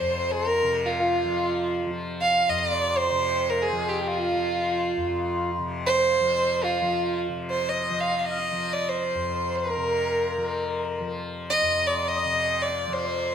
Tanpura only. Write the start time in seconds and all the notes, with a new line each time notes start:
Already playing: C3 F3
0.01 F2
0.62 C3
1.25 F3
1.86 F3
2.49 F2
3.10 C3
3.72 F3
4.33 F3
4.97 F2
5.58 C3
6.21 F3
6.82 F3
7.28 C3
7.90 F3
8.52 F3
9.15 F2
9.76 C3
10.38 F3
11.01 F3
11.62 F2
12.24 C3
12.87 F3